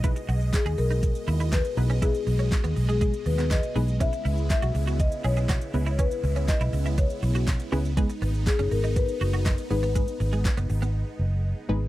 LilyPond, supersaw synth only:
\new Staff \with { instrumentName = "Supersaw synth" } { \time 4/4 \key cis \minor \tempo 4 = 121 << { <b, dis''>1~ | <b, dis''>1 | <cis e'>1~ | <cis e'>1 |
dis'1~ | dis'1 | } \\ { gis1~ | gis1 | b1 | b1 |
b1~ | b1 | } >> }